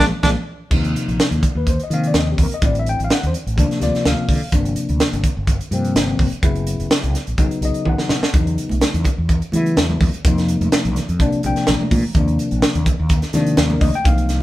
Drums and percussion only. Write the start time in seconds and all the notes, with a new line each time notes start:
0.00 snare
0.23 kick, snare, low conga
0.71 kick, crash
0.84 closed hi-hat
0.96 closed hi-hat
1.09 closed hi-hat
1.20 snare, closed hi-hat
1.32 closed hi-hat
1.43 kick, closed hi-hat
1.67 kick, closed hi-hat
1.80 closed hi-hat
1.91 closed hi-hat
2.04 closed hi-hat
2.14 snare, closed hi-hat
2.38 kick, open hi-hat
2.51 closed hi-hat
2.62 kick, closed hi-hat
2.75 closed hi-hat
2.86 closed hi-hat
3.00 closed hi-hat
3.10 snare, closed hi-hat
3.23 closed hi-hat
3.34 closed hi-hat
3.47 closed hi-hat
3.58 kick, closed hi-hat
3.71 snare, closed hi-hat
3.81 snare, closed hi-hat
3.95 snare, closed hi-hat
4.05 snare, closed hi-hat
4.29 kick, open hi-hat
4.52 kick, closed hi-hat
4.65 closed hi-hat
4.76 closed hi-hat
4.89 closed hi-hat
5.00 snare, closed hi-hat
5.13 closed hi-hat
5.24 kick, closed hi-hat
5.47 kick, closed hi-hat
5.61 closed hi-hat
5.72 closed hi-hat
5.85 closed hi-hat
5.96 snare, closed hi-hat
6.19 kick, open hi-hat
6.32 closed hi-hat
6.43 kick, closed hi-hat
6.55 closed hi-hat
6.67 closed hi-hat
6.80 closed hi-hat
6.91 snare, closed hi-hat
7.04 closed hi-hat
7.15 snare, closed hi-hat
7.27 closed hi-hat
7.38 kick, closed hi-hat
7.51 closed hi-hat
7.62 closed hi-hat
7.74 closed hi-hat
7.85 high tom
7.98 snare
8.09 snare
8.23 snare
8.34 kick, closed hi-hat
8.47 closed hi-hat
8.58 closed hi-hat
8.69 closed hi-hat, high conga
8.81 snare, closed hi-hat
8.94 closed hi-hat
9.04 kick, closed hi-hat, low conga
9.29 kick, closed hi-hat
9.42 closed hi-hat
9.52 closed hi-hat, high conga
9.66 closed hi-hat
9.77 snare, closed hi-hat, low conga
9.90 high conga
10.01 kick, open hi-hat, high conga, low conga
10.14 closed hi-hat
10.25 kick, closed hi-hat
10.38 snare, closed hi-hat
10.48 closed hi-hat
10.61 closed hi-hat, high conga
10.72 snare, closed hi-hat
10.85 closed hi-hat
10.96 snare, closed hi-hat, low conga
11.09 closed hi-hat
11.20 kick, closed hi-hat
11.32 closed hi-hat
11.43 closed hi-hat, high conga
11.56 snare, closed hi-hat
11.67 snare, closed hi-hat, low conga
11.81 high conga
11.91 kick, open hi-hat, high conga, low conga
12.15 kick, closed hi-hat
12.28 closed hi-hat
12.39 closed hi-hat
12.51 closed hi-hat
12.62 snare, closed hi-hat
12.75 closed hi-hat
12.86 kick, closed hi-hat, low conga
13.09 kick, closed hi-hat
13.22 snare, closed hi-hat
13.33 snare, closed hi-hat, high conga
13.46 closed hi-hat
13.57 snare, closed hi-hat, low conga
13.70 high conga
13.81 kick, open hi-hat, high conga, low conga
13.94 closed hi-hat
14.04 kick, closed hi-hat, low conga
14.18 closed hi-hat
14.29 snare, closed hi-hat